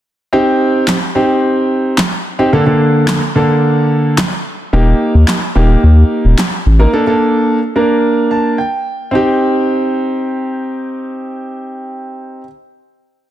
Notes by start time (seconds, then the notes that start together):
0.33 C4 D#4 G4
0.88 snare, clap
1.15 C4 D#4 G4
1.98 snare, clap
2.39 C4 D#4 G4
2.53 D3 A#3 D4 A4
2.66 D3 A#3 D4 A4
3.08 snare, clap
3.35 D3 A#3 D4 A4
4.18 snare, clap
4.73 D#1 A#3 D#4 G4
5.14 D#2
5.28 snare, clap
5.55 D#1 A#3 D#4 G4
5.83 D#2
6.25 D#1
6.38 snare, clap
6.66 A1
6.79 A#3 D#4 A#4
6.93 A#3 D4 A4
7.07 A#3 D4 A4
7.76 A#3 D4 A#4
8.31 A5
8.58 G5
9.11 C4 D#4 G4